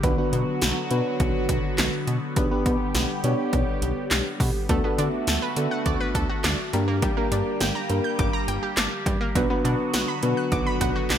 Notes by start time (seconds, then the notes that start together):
Already playing: D3
0.03 B1 F#3 B3 D4 F#4 B4, kick, closed hi-hat
0.18 B3 D4 F#4 B4
0.33 B2, closed hi-hat
0.62 B1, snare, closed hi-hat
0.91 B2 B3 D4 F#4 B4, closed hi-hat
1.20 B1, kick, closed hi-hat
1.49 B1, kick, closed hi-hat
1.78 B1, snare, clap, closed hi-hat
2.07 B2, closed hi-hat
2.36 B1 G3 B3 D4 G4 B4, kick, closed hi-hat
2.51 B3 D4 G4 B4
2.66 B2, kick, closed hi-hat
2.95 B1, snare, closed hi-hat
3.24 B2 B3 D4 G4 C#5, closed hi-hat
3.53 B1, kick, closed hi-hat
3.82 B1, closed hi-hat
4.11 B1, snare, clap, closed hi-hat
4.40 B2, kick, open hi-hat
4.69 D2 A3 B3 D4 F#4 A4, kick, closed hi-hat
4.84 B3 D4 F#4 A4
4.98 D3 D4, closed hi-hat
5.27 D2 A4, snare, closed hi-hat
5.42 B4
5.56 D3 B3 D4 F#4 A4, closed hi-hat
5.71 F#5
5.86 D2 D5, kick, closed hi-hat
6.00 B4
6.15 D2 A4, kick, closed hi-hat
6.29 F#4
6.44 D2 D4, snare, clap, closed hi-hat
6.73 G2 G3 A#3 D4 G4 A#4, closed hi-hat
6.88 A#3
7.02 G3, kick, closed hi-hat
7.17 A#3 D4 G4 A#4
7.32 G2 D4, closed hi-hat
7.61 G1 G5, snare, closed hi-hat
7.75 A#5
7.90 G2 A#3 D4 G4 A#4, closed hi-hat
8.04 G6
8.19 G1 D6, kick, closed hi-hat
8.33 A#5
8.48 G1 G5, closed hi-hat
8.63 G4
8.77 G1 D4, snare, clap, closed hi-hat
9.06 G2 G3, kick, closed hi-hat
9.21 A#3
9.35 B1 D3 F#3 B3 D4 F#4 B4, kick, closed hi-hat
9.50 B3 D4 F#4 B4
9.65 B2 D4, closed hi-hat
9.94 B1 F#5, snare, closed hi-hat
10.08 B5
10.23 B2 B3 D4 F#4 B4, closed hi-hat
10.37 F#6
10.52 B1 D6, kick, closed hi-hat
10.67 B5
10.81 B1 F#5, kick, closed hi-hat
10.96 F#4
11.10 B1 D4, snare, clap, closed hi-hat